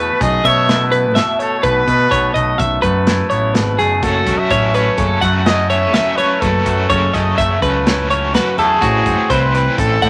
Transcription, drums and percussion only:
0.21 kick, snare, closed hi-hat
0.45 kick, closed hi-hat
0.69 snare, closed hi-hat
0.93 closed hi-hat
1.16 snare, closed hi-hat
1.40 closed hi-hat
1.64 kick, closed hi-hat
1.88 kick, closed hi-hat
2.12 kick, closed hi-hat
2.35 kick, closed hi-hat
2.59 kick, closed hi-hat
2.83 kick, closed hi-hat
3.07 snare, closed hi-hat
3.31 closed hi-hat
3.55 snare, closed hi-hat
3.79 snare, closed hi-hat
4.03 kick, closed hi-hat
4.27 kick, snare, closed hi-hat
4.50 kick, closed hi-hat
4.74 snare, closed hi-hat
4.98 kick, closed hi-hat
5.22 kick, snare, closed hi-hat
5.46 snare, closed hi-hat
5.70 closed hi-hat
5.94 snare, closed hi-hat
6.18 snare, closed hi-hat
6.42 kick, closed hi-hat
6.66 kick, closed hi-hat
6.90 kick, closed hi-hat
7.14 kick, snare, closed hi-hat
7.38 kick, closed hi-hat
7.62 kick, closed hi-hat
7.87 snare, closed hi-hat
8.10 closed hi-hat
8.34 snare, closed hi-hat
8.58 closed hi-hat
8.82 kick, closed hi-hat
9.06 kick, closed hi-hat
9.30 kick, closed hi-hat
9.55 closed hi-hat
9.78 kick, closed hi-hat
10.02 kick, closed hi-hat

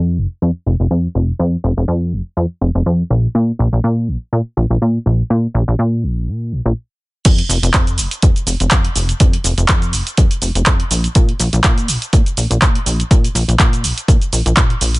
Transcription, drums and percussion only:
7.25 kick, closed hi-hat, crash, shaker
7.38 closed hi-hat
7.50 open hi-hat, shaker
7.63 closed hi-hat, shaker
7.74 kick, clap, closed hi-hat, shaker
7.87 closed hi-hat, shaker
7.98 open hi-hat, shaker
8.11 closed hi-hat, shaker
8.22 kick, closed hi-hat, shaker
8.36 closed hi-hat, shaker
8.47 open hi-hat, shaker
8.60 closed hi-hat, shaker
8.71 kick, clap, closed hi-hat, shaker
8.85 closed hi-hat
8.96 open hi-hat, shaker
9.09 closed hi-hat, shaker
9.20 kick, closed hi-hat, shaker
9.33 closed hi-hat
9.44 open hi-hat, shaker
9.58 closed hi-hat, shaker
9.68 kick, clap, closed hi-hat, shaker
9.82 closed hi-hat, shaker
9.93 open hi-hat, shaker
10.07 closed hi-hat, shaker
10.17 kick, closed hi-hat, shaker
10.31 closed hi-hat, shaker
10.42 open hi-hat, shaker
10.55 closed hi-hat, shaker
10.66 kick, clap, closed hi-hat, shaker
10.80 closed hi-hat
10.91 open hi-hat, shaker
11.04 closed hi-hat, shaker
11.15 kick, closed hi-hat, shaker
11.29 closed hi-hat
11.40 open hi-hat, shaker
11.53 closed hi-hat, shaker
11.64 kick, clap, closed hi-hat, shaker
11.78 closed hi-hat, shaker
11.88 open hi-hat, shaker
12.02 closed hi-hat, shaker
12.13 kick, closed hi-hat, shaker
12.26 closed hi-hat, shaker
12.37 open hi-hat, shaker
12.51 closed hi-hat, shaker
12.62 kick, clap, closed hi-hat, shaker
12.75 closed hi-hat
12.86 open hi-hat, shaker
13.00 closed hi-hat, shaker
13.11 kick, closed hi-hat, shaker
13.24 closed hi-hat, shaker
13.35 open hi-hat, shaker
13.49 closed hi-hat, shaker
13.59 kick, clap, closed hi-hat, shaker
13.73 closed hi-hat, shaker
13.84 open hi-hat, shaker
13.98 closed hi-hat, shaker
14.08 kick, closed hi-hat, shaker
14.22 closed hi-hat, shaker
14.33 open hi-hat, shaker
14.46 closed hi-hat, shaker
14.57 kick, clap, closed hi-hat, shaker
14.70 closed hi-hat
14.81 open hi-hat, shaker
14.94 closed hi-hat, shaker

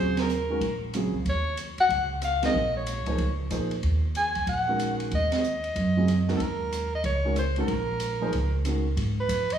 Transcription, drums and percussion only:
0.17 snare, ride
0.29 hi-hat pedal
0.61 ride
0.94 cross-stick, hi-hat pedal, ride
1.26 ride
1.57 hi-hat pedal, ride
1.78 ride
1.90 ride
2.22 cross-stick, hi-hat pedal, ride
2.43 snare, ride
2.87 hi-hat pedal, ride
3.06 kick, ride
3.18 ride
3.51 cross-stick, hi-hat pedal, ride
3.71 ride
3.83 ride
4.15 hi-hat pedal, ride
4.35 ride
4.47 ride
4.79 cross-stick, hi-hat pedal, ride
5.00 ride
5.11 ride
5.32 snare, ride
5.44 hi-hat pedal
5.64 ride
5.76 ride
6.08 cross-stick, hi-hat pedal, ride
6.28 snare
6.40 ride
6.72 hi-hat pedal, ride
7.04 ride
7.36 cross-stick, hi-hat pedal, ride
7.56 ride
7.68 ride
8.00 hi-hat pedal, ride
8.33 ride
8.65 cross-stick, hi-hat pedal, ride
8.97 ride
9.29 hi-hat pedal, ride
9.50 ride

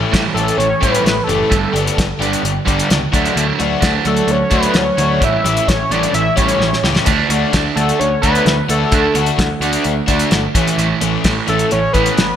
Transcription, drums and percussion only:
0.13 kick, snare, closed hi-hat
0.37 closed hi-hat
0.48 closed hi-hat
0.60 closed hi-hat
0.83 kick, closed hi-hat
0.95 closed hi-hat
1.06 snare, closed hi-hat
1.29 closed hi-hat
1.52 kick, closed hi-hat
1.76 closed hi-hat
1.87 closed hi-hat
1.98 kick, snare, closed hi-hat
2.22 closed hi-hat
2.33 closed hi-hat
2.45 closed hi-hat
2.67 kick, closed hi-hat
2.79 closed hi-hat
2.90 snare, closed hi-hat
3.13 kick, closed hi-hat
3.25 closed hi-hat
3.37 closed hi-hat
3.60 closed hi-hat
3.82 kick, snare, closed hi-hat
4.05 closed hi-hat
4.17 closed hi-hat
4.28 closed hi-hat
4.51 kick, closed hi-hat
4.63 closed hi-hat
4.74 snare, closed hi-hat
4.98 closed hi-hat
5.22 kick, closed hi-hat
5.46 closed hi-hat
5.57 closed hi-hat
5.68 kick, snare, closed hi-hat
5.92 closed hi-hat
6.03 closed hi-hat
6.14 closed hi-hat
6.37 kick, closed hi-hat
6.48 closed hi-hat
6.61 snare
6.73 snare
6.84 snare
6.96 snare
7.06 kick, closed hi-hat, crash
7.30 closed hi-hat
7.53 kick, snare, closed hi-hat
7.77 closed hi-hat
7.89 closed hi-hat
8.01 closed hi-hat
8.23 kick, closed hi-hat
8.35 closed hi-hat
8.46 snare, closed hi-hat
8.69 closed hi-hat
8.92 kick, closed hi-hat
9.15 closed hi-hat
9.26 closed hi-hat
9.39 kick, snare, closed hi-hat
9.62 closed hi-hat
9.73 closed hi-hat
9.84 closed hi-hat
10.08 kick, closed hi-hat
10.19 closed hi-hat
10.31 snare, closed hi-hat
10.55 kick, closed hi-hat
10.67 closed hi-hat
10.79 closed hi-hat
11.01 closed hi-hat
11.24 kick, snare, closed hi-hat
11.48 closed hi-hat
11.59 closed hi-hat
11.71 closed hi-hat
11.94 kick, closed hi-hat
12.06 closed hi-hat
12.18 snare, closed hi-hat

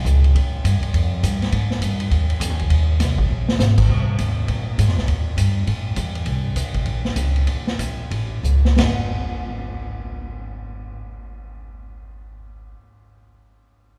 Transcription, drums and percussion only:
0.05 kick, hi-hat pedal
0.24 ride
0.35 kick, ride
0.65 kick, hi-hat pedal, ride
0.83 ride
0.94 kick, ride
1.23 kick, hi-hat pedal, ride
1.42 snare, ride
1.52 kick, ride
1.71 snare
1.82 kick, hi-hat pedal, ride
2.00 ride
2.11 kick, ride
2.30 ride
2.41 kick, hi-hat pedal, ride
2.59 ride
2.70 kick, ride
3.00 kick, snare, hi-hat pedal, ride
3.18 kick
3.49 snare
3.59 snare, hi-hat pedal
3.78 kick, crash
3.89 kick
4.18 kick, hi-hat pedal, ride
4.48 kick, ride
4.78 kick, hi-hat pedal, ride
4.88 snare
4.98 snare
5.08 kick, ride
5.38 kick, hi-hat pedal, ride
5.67 kick, ride
5.96 kick, hi-hat pedal, ride
6.15 ride
6.26 kick, ride
6.56 kick, hi-hat pedal, ride
6.74 kick, ride
6.86 kick, ride
7.05 snare
7.16 kick, hi-hat pedal, ride
7.36 ride
7.47 kick, ride
7.67 snare
7.79 kick, hi-hat pedal, ride
8.11 kick, ride
8.44 hi-hat pedal
8.65 snare
8.78 snare, floor tom, ride bell

